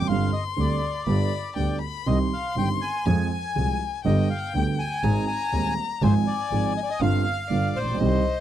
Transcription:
0.00 grand piano F#2, violin D6
0.08 double bass G1, grand piano G1 G2 D3 G3 C4 G4, bandoneon F5, violin C6
0.33 bandoneon D#5
0.56 grand piano D2 D3 G3 C4 G4, double bass D2, bandoneon D5
1.07 grand piano G1 G2 D3 G3 B3 G4, double bass G1, violin B5
1.56 grand piano D2 D3 G3 B3 G4, double bass D2, violin G5
1.81 violin B5
2.06 grand piano C2 C3 D#3 G3 C4 G4, double bass C2, bandoneon D#5, violin C6
2.33 bandoneon F5
2.56 double bass G1, grand piano G1 G2 D#3 G3 C4 G4, bandoneon G5
2.81 bandoneon G#5
3.06 double bass F2, grand piano F2 F3 G#3 C4 G#4, violin G#5
3.31 bandoneon G#5
3.56 grand piano C2 C3 F3 G#3 C4 G#4, double bass C2
4.05 grand piano G1 G2 D3 G3 B3 G4, double bass G1, bandoneon D#5, violin G5
4.30 bandoneon F5
4.54 double bass D2, grand piano D2 D3 G3 B3 G4, bandoneon G5
4.79 bandoneon G#5
5.03 double bass G#1, grand piano G#1 G#2 D#3 G#3 C4 G#4, violin A#5
5.27 bandoneon G#5
5.53 grand piano D#1 D#2 D#3 G#3 C4 G#4, double bass D#2
6.01 grand piano G#1 G#2 F3 G#3 C4 G#4, double bass G#1, bandoneon C5, violin G#5
6.27 bandoneon D5
6.51 double bass G#1, grand piano G#1 G#2 F3 G#3 C4 G#4
6.77 bandoneon D#5
6.83 bandoneon D5
6.90 bandoneon D#5
7.01 double bass G1, grand piano G1 G2 D3 G3 C4 F4, violin F5, bandoneon F5
7.50 grand piano G1 G2 D3 G3 B3 F4, double bass G1, violin D5
7.75 double bass A#1, bandoneon C5
7.82 grand piano A1
7.89 grand piano A#1
7.94 grand piano B1
8.00 double bass C2, grand piano C2 C3 D#3 G3 C4 G4, violin D#5

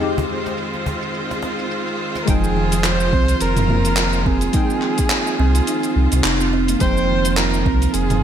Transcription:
Already playing: string section D#3 G#3 C4 F4 C5, synth stab D#4 G4
0.00 synth stab F2 G#3 D#4 G4, shaker
0.17 cajon bass, shaker
0.46 cajon slap, shaker
0.57 shaker
0.74 cajon slap, shaker
0.86 cajon bass
1.02 shaker
1.14 shaker
1.30 cajon slap, shaker
1.42 cajon slap
1.59 shaker
1.71 shaker
1.87 shaker
2.16 cajon slap, shaker
2.22 synth stab G#3, kamancheh A#4
2.28 sub bass F1, kalimba F3, synth stab D#4 G5, kamancheh G#4, kick, open hi-hat, shaker
2.44 shaker
2.56 kalimba D#3
2.72 kalimba F3, open hi-hat, shaker
2.84 kalimba F4, kamancheh C5, clap, open hi-hat, shaker
3.00 shaker
3.13 sub bass C2, kalimba C4, kick
3.28 open hi-hat, shaker
3.40 sub bass F1, kamancheh A#4, open hi-hat, shaker
3.57 kalimba F3, mid tom, open hi-hat, shaker
3.68 kalimba A#3, mid tom
3.85 kalimba F3, open hi-hat, shaker
3.97 kalimba F4, clap, open hi-hat, shaker
4.13 shaker
4.25 kalimba C4, kamancheh G#4, kick
4.41 open hi-hat, shaker
4.52 synth stab G#3 D#4 G5, kalimba D#4, kick, open hi-hat, shaker
4.70 shaker
4.82 clap
4.98 kick, open hi-hat, shaker
5.10 kalimba F4, clap, open hi-hat, shaker
5.27 shaker
5.39 sub bass C2, kalimba C4
5.55 open hi-hat, shaker
5.67 kalimba D#4, open hi-hat, shaker
5.83 open hi-hat, shaker
5.96 sub bass C2
6.12 sub bass C2, kalimba C3, open hi-hat, shaker
6.24 sub bass F1, kalimba D#4, clap, open hi-hat, shaker
6.40 kalimba C4, shaker
6.53 kalimba C4
6.68 kalimba A#3, open hi-hat, shaker
6.79 sub bass F1, kalimba F3, synth stab G#3 D#4, kamancheh C5, kick, open hi-hat, shaker
6.83 synth stab G5
6.97 shaker
7.10 kalimba D#3
7.25 kalimba F3, open hi-hat, shaker
7.36 kalimba F4, kamancheh A#4, clap, open hi-hat, shaker
7.54 shaker
7.66 sub bass C2, kalimba C4, kick
7.82 open hi-hat, shaker
7.88 kamancheh A#4
7.93 sub bass F1, kamancheh G#4, open hi-hat, shaker
8.10 kalimba F3, mid tom, open hi-hat, shaker

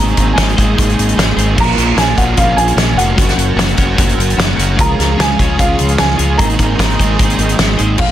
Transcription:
Already playing: fingered electric bass G#1, overdriven electric guitar G#2 D#3 C4, clean electric guitar G#3 A#3 D#4 G#4 C5, string machine A#4 D#5 G#5 C6, upright piano A#5
0.08 closed hi-hat
0.17 fingered electric bass G#1, kick, closed hi-hat
0.33 overdriven electric guitar G#2 C4, clean electric guitar G#3 A#3 D#4 G#4 C5, upright piano G#5
0.37 fingered electric bass G#1, overdriven electric guitar D#3, kick, snare, closed hi-hat
0.49 closed hi-hat
0.55 fingered electric bass G#1, overdriven electric guitar G#2 D#3 C4, clean electric guitar G#3 A#3 D#4 G#4 C5, kick, closed hi-hat
0.76 fingered electric bass G#1, overdriven electric guitar G#2 D#3 C4, clean electric guitar G#3 A#3 D#4 G#4 C5, kick, closed hi-hat
0.89 closed hi-hat
0.98 fingered electric bass G#1, closed hi-hat
1.09 closed hi-hat
1.16 fingered electric bass G#1, overdriven electric guitar G#2 D#3 C4, clean electric guitar G#3 A#3 D#4 G#4 C5, snare, closed hi-hat
1.35 fingered electric bass G#1, overdriven electric guitar G#2 D#3 C4, clean electric guitar G#3 A#3 D#4 G#4 C5, closed hi-hat
1.56 fingered electric bass A#1, clean electric guitar A#2 F3 A#3 C#4 F4 A#4, string machine C#5 F5 C#6, kick, crash
1.60 tine electric piano A#4, upright piano A#5
1.77 fingered electric bass A#1, closed hi-hat
1.95 fingered electric bass A#1, clean electric guitar A#2 F3 A#3 C#4 F4 A#4, tine electric piano G#4, upright piano G#5, snare, closed hi-hat
2.17 fingered electric bass A#1, clean electric guitar A#2 F3 A#3 C#4 F4 A#4, tine electric piano F#4, upright piano F#5, kick, closed hi-hat
2.37 fingered electric bass A#1, clean electric guitar A#2 F3 A#3 C#4 F4 A#4, tine electric piano F4, upright piano F5, kick, closed hi-hat
2.57 fingered electric bass A#1, tine electric piano G#4, upright piano G#5, closed hi-hat
2.68 closed hi-hat
2.76 fingered electric bass A#1, clean electric guitar A#2 F3 A#3 C#4 F4 A#4, snare, closed hi-hat
2.95 fingered electric bass F1, clean electric guitar A#2 F3 A#3 C#4 F4 A#4, tine electric piano F#4, upright piano F#5, closed hi-hat
3.16 fingered electric bass F#1, clean electric guitar F#3 A#3 C#4 F#4 A#4, string machine F#5, kick, closed hi-hat
3.29 snare, closed hi-hat
3.37 fingered electric bass F#1, closed hi-hat
3.56 fingered electric bass F#1, clean electric guitar F#3 A#3 C#4 F#4 A#4, snare, closed hi-hat
3.68 closed hi-hat
3.76 fingered electric bass F#1, clean electric guitar F#3 A#3 C#4 F#4 A#4, kick, closed hi-hat
3.95 fingered electric bass F#1, clean electric guitar F#3 A#3 C#4 F#4 A#4, kick, closed hi-hat
4.09 closed hi-hat
4.17 fingered electric bass F#1, closed hi-hat
4.30 closed hi-hat
4.35 fingered electric bass F#1, clean electric guitar F#3 A#3 C#4 F#4 A#4
4.39 snare, closed hi-hat
4.55 fingered electric bass F#1, clean electric guitar F#3 A#3 C#4 F#4 A#4, closed hi-hat
4.76 fingered electric bass C#2, clean electric guitar C#3 F3 G#3 C#4 F4 C#5, string machine G#4 F5, overdriven electric guitar G#4, kick, closed hi-hat
4.80 tine electric piano A#4, upright piano A#5
4.99 fingered electric bass C#2, snare, closed hi-hat
5.17 fingered electric bass C#2, clean electric guitar C#3 F3 G#3 C#4 F4 C#5, overdriven electric guitar G#4, tine electric piano G#4, upright piano G#5, snare, closed hi-hat
5.38 fingered electric bass C#2, clean electric guitar C#3 F3 G#3 C#4 F4 C#5, overdriven electric guitar G#4, kick, closed hi-hat
5.57 fingered electric bass C#2, clean electric guitar C#3 F3 G#3 C#4 F4 C#5, tine electric piano F4, overdriven electric guitar G#4, upright piano F5, kick, closed hi-hat
5.79 fingered electric bass C#2, closed hi-hat
5.89 closed hi-hat
5.97 fingered electric bass C#2, clean electric guitar C#3 F3 G#3 C#4 F4 C#5, tine electric piano G#4, overdriven electric guitar G#4, upright piano G#5, snare, closed hi-hat
6.16 fingered electric bass C#2, clean electric guitar C#3 F3 G#3 C#4 F4 C#5, closed hi-hat
6.20 overdriven electric guitar G#4
6.37 fingered electric bass G#1, overdriven electric guitar G#2 D#3 C4, clean electric guitar G#3 A#3 D#4 G#4 C5, tine electric piano A#4, string machine A#4 D#5 G#5 C6, upright piano A#5, kick, closed hi-hat
6.50 closed hi-hat
6.59 fingered electric bass G#1, kick, closed hi-hat
6.78 fingered electric bass G#1, overdriven electric guitar G#2 D#3 C4, clean electric guitar G#3 A#3 D#4 G#4 C5, kick, snare, closed hi-hat
6.90 closed hi-hat
6.98 fingered electric bass G#1, overdriven electric guitar G#2 D#3 C4, clean electric guitar G#3 A#3 D#4 G#4 C5, kick, closed hi-hat
7.18 fingered electric bass G#1, overdriven electric guitar G#2 D#3 C4, clean electric guitar G#3 A#3 D#4 G#4 C5, kick, closed hi-hat
7.30 closed hi-hat
7.38 fingered electric bass G#1, closed hi-hat
7.49 closed hi-hat
7.57 fingered electric bass G#1, overdriven electric guitar G#2 D#3 C4, clean electric guitar G#3 A#3 D#4 G#4 C5, snare, closed hi-hat
7.76 fingered electric bass G#1, overdriven electric guitar G#2 D#3 C4, clean electric guitar G#3 A#3 D#4 G#4 C5, closed hi-hat
7.98 fingered electric bass A#1, upright piano F5, kick, floor tom, crash

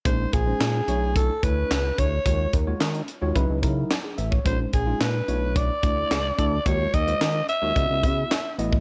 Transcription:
0.05 analog synth bass A#1, tine electric piano G#3 C#4 D#4 C5, alto saxophone C5, kick, closed hi-hat
0.33 analog synth bass A#1, alto saxophone G#4, kick, closed hi-hat
0.46 tine electric piano G#3 C#4 D#4 C5
0.60 analog synth bass A#2, snare, clap, closed hi-hat
0.88 analog synth bass B1, tine electric piano A3 D4 E4 C#5, closed hi-hat
1.16 alto saxophone A4, kick, closed hi-hat
1.43 analog synth bass D2, tine electric piano A3 D4 E4 C#5, alto saxophone B4, kick, closed hi-hat
1.71 analog synth bass C#2, snare, clap, closed hi-hat
1.98 analog synth bass D2, tine electric piano A3 D4 E4 C#5, alto saxophone C#5, kick, closed hi-hat
2.26 analog synth bass D#2, tine electric piano G#3 F4 F#4 C#5, kick, closed hi-hat
2.53 analog synth bass D#2, kick, closed hi-hat
2.67 tine electric piano G#3 F4 F#4 C#5
2.81 analog synth bass D#3, snare, clap, closed hi-hat
2.95 closed hi-hat
3.08 closed hi-hat
3.21 analog synth bass D#2, tine electric piano G#3 F4 F#4 C#5
3.35 analog synth bass C#2, tine electric piano F#3 D#4 E4 B4, kick, closed hi-hat
3.50 analog synth bass C#2
3.62 analog synth bass C#3, tine electric piano F#3 D#4 E4 A#4, kick, closed hi-hat
3.91 snare, clap, closed hi-hat
4.04 tine electric piano G#4
4.18 analog synth bass A1, tine electric piano E5, closed hi-hat
4.31 tine electric piano C#5, kick
4.45 analog synth bass A#1, tine electric piano G#3 C#4 D#4 C5, alto saxophone C5, kick, closed hi-hat
4.73 analog synth bass A#1, alto saxophone G#4, kick, closed hi-hat
4.86 tine electric piano G#3 C#4 D#4 F4
5.01 analog synth bass A#2, alto saxophone B4, snare, clap, closed hi-hat
5.28 analog synth bass B1, tine electric piano A3 D4 E4 C#5, closed hi-hat
5.56 alto saxophone D5, kick, closed hi-hat
5.83 analog synth bass D2, tine electric piano A3 D4 E4 D5, kick, closed hi-hat
6.11 analog synth bass C#2, snare, clap, closed hi-hat
6.38 analog synth bass D2, tine electric piano A3 D4 E4 A4, kick, closed hi-hat
6.66 analog synth bass D#2, tine electric piano G#3 F4 F#4 C#5, alto saxophone C#5, kick, closed hi-hat
6.94 analog synth bass D#2, alto saxophone D#5, kick, closed hi-hat
7.07 tine electric piano G#3 F4 F#4 C5, closed hi-hat
7.21 analog synth bass D#3, snare, clap, closed hi-hat
7.49 alto saxophone E5, closed hi-hat
7.62 analog synth bass D#2, tine electric piano G#3 F4 F#4 C#5
7.75 analog synth bass C#2, tine electric piano B3 E4 F#4 D#5, kick, closed hi-hat
7.90 analog synth bass C#2
8.03 analog synth bass C#3, tine electric piano B3 E4 F#4 E5, kick, closed hi-hat
8.31 snare, clap, closed hi-hat
8.58 analog synth bass A1, tine electric piano B3 E4 F#4 D#5, closed hi-hat
8.73 kick

